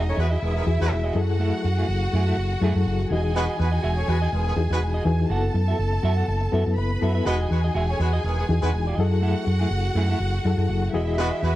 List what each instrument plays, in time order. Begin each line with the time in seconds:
Already playing: fingered electric bass E1, reed electric piano E3 D#4 F#4 G#4, violin section D#4 D#5
0.06 horn section C#4 A4 C#5, muted clean electric guitar stroke
0.17 fingered electric bass E2, horn section G#3 B3 F#4 B4, violin section E4 E5, muted clean electric guitar stroke
0.31 clean electric guitar F#4 G#4 D#5
0.42 fingered electric bass E1, horn section D#3 G#3 B3 G#4, muted clean electric guitar stroke
0.56 horn section D#3 G#3 B3 G#4, muted clean electric guitar stroke
0.66 fingered electric bass E2, reed electric piano E3 E4 F#4 G#4
0.80 fingered electric bass E2, horn section G#3 B3 F#4 B4, muted clean electric guitar stroke
0.90 fingered electric bass E1, muted clean electric guitar stroke
1.04 clean electric guitar F#4 G#4 D#5
1.15 fingered electric bass F#2, reed electric piano F#3 E4 G#4 A4, violin section F#4 F#5, muted clean electric guitar stroke
1.29 muted clean electric guitar stroke
1.39 clean electric guitar A3 E4 A4
1.64 fingered electric bass F#2, muted clean electric guitar stroke
1.78 clean electric guitar A3 E4 G#4
1.88 fingered electric bass F#1, muted clean electric guitar stroke
2.03 muted clean electric guitar stroke
2.13 fingered electric bass F#2, clean electric guitar A3 E4 G#4
2.27 clean electric guitar A3 E4 A4
2.37 fingered electric bass F#1
2.52 muted clean electric guitar stroke
2.61 fingered electric bass F#2, reed electric piano F#3 E4 G#4 A4, clean electric guitar A3 E4 G#4
2.75 fingered electric bass F#2, muted clean electric guitar stroke
2.86 fingered electric bass F#1, muted clean electric guitar stroke
3.00 muted clean electric guitar stroke
3.10 fingered electric bass E1, reed electric piano E3 D#4 F#4 G4, clean electric guitar F#4 G#4 D#5, violin section G#4 G#5
3.18 reed electric piano G#4
3.24 clean electric guitar F#4 G#4 D#5
3.35 horn section G#3 B3 F#4 B4, clean electric guitar F#4 G#4 D#5
3.59 fingered electric bass E2, horn section G#3 B3 F#4 B4
3.72 clean electric guitar F#4 G#4 D#5
3.82 fingered electric bass E1, clean electric guitar F#4 G#4 E5
3.96 horn section C#4 A4 C#5, muted clean electric guitar stroke
4.08 fingered electric bass E2, horn section G#3 B3 F#4 B4, muted clean electric guitar stroke
4.22 clean electric guitar F#4 G#4 D#5
4.32 fingered electric bass E1, horn section D#3 G#3 B3 G#4, muted clean electric guitar stroke
4.47 horn section D#3 G#3 B3 G#4, muted clean electric guitar stroke
4.56 fingered electric bass E2, reed electric piano E3 D#4 F#4 G#4
4.70 fingered electric bass E2, horn section G#3 B3 F#4 B4, muted clean electric guitar stroke
4.80 fingered electric bass E1, muted clean electric guitar stroke
4.94 clean electric guitar F#4 G#4 D#5
5.05 fingered electric bass E2, reed electric piano E3 D#4 F#4 G#4, muted clean electric guitar stroke
5.20 muted clean electric guitar stroke
5.30 fingered electric bass F#1, reed electric piano B3 E4 A4, clean electric guitar F#4 A4 F#5, violin section A4 A5
5.54 fingered electric bass F#2, muted clean electric guitar stroke
5.68 clean electric guitar F#4 A4 E5
5.79 fingered electric bass F#1
5.93 muted clean electric guitar stroke
6.03 fingered electric bass F#2, clean electric guitar F#4 A4 E5
6.17 clean electric guitar F#4 A4 F#5
6.28 fingered electric bass F#1, muted clean electric guitar stroke
6.41 muted clean electric guitar stroke
6.52 fingered electric bass F#2, reed electric piano B3 E4 A4, clean electric guitar F#4 A4 E5
6.67 fingered electric bass F#2, muted clean electric guitar stroke
6.77 fingered electric bass F#1, violin section B4 B5, muted clean electric guitar stroke
6.90 muted clean electric guitar stroke
7.01 fingered electric bass F#2, reed electric piano B3 E4 A4, clean electric guitar F#4 A4 E5
7.15 clean electric guitar F#4 A4 E5
7.25 fingered electric bass E1, reed electric piano E3 D#4 F#4, horn section G#3 B3 F#4 B4, clean electric guitar F#4 G#4 D#5, violin section G#4 G#5
7.51 fingered electric bass E2, horn section G#3 B3 F#4 B4, muted clean electric guitar stroke
7.64 clean electric guitar F#4 G#4 D#5
7.74 fingered electric bass E1, clean electric guitar F#4 G#4 E5
7.89 horn section C#4 A4 C#5, muted clean electric guitar stroke
8.00 fingered electric bass E2, horn section G#3 B3 F#4 B4, muted clean electric guitar stroke
8.13 clean electric guitar F#4 G#4 D#5
8.24 fingered electric bass E1, horn section D#3 G#3 B3 G#4, muted clean electric guitar stroke
8.38 horn section D#3 G#3 B3 G#4, muted clean electric guitar stroke
8.49 fingered electric bass E2, reed electric piano E3 D#4 F#4 G#4
8.62 fingered electric bass E2, horn section G#3 B3 F#4 B4, muted clean electric guitar stroke
8.73 fingered electric bass E1, muted clean electric guitar stroke
8.87 clean electric guitar F#4 G#4 D#5
8.97 fingered electric bass F#2, reed electric piano F#3 E4 G#4 A4, violin section F#4 F#5, muted clean electric guitar stroke
9.11 muted clean electric guitar stroke
9.21 clean electric guitar A3 E4 A4
9.47 fingered electric bass F#2, muted clean electric guitar stroke
9.60 clean electric guitar A3 E4 G#4
9.71 fingered electric bass F#1, muted clean electric guitar stroke
9.85 muted clean electric guitar stroke
9.95 fingered electric bass F#2, clean electric guitar A3 E4 G#4
10.09 clean electric guitar A3 E4 A4
10.20 fingered electric bass F#1
10.34 muted clean electric guitar stroke
10.45 fingered electric bass F#2, reed electric piano F#3 E4 G#4 A4
10.58 fingered electric bass F#2, muted clean electric guitar stroke
10.69 fingered electric bass F#1, muted clean electric guitar stroke
10.83 muted clean electric guitar stroke
10.93 fingered electric bass E1, reed electric piano E3 E4 F#4 G#4, violin section E4 E5, clean electric guitar F#4 G#4 D#5
11.08 clean electric guitar F#4 G#4 D#5
11.18 horn section G#3 B3 F#4 B4, clean electric guitar F#4 G#4 D#5
11.43 fingered electric bass E2, horn section G#3 B3 F#4 B4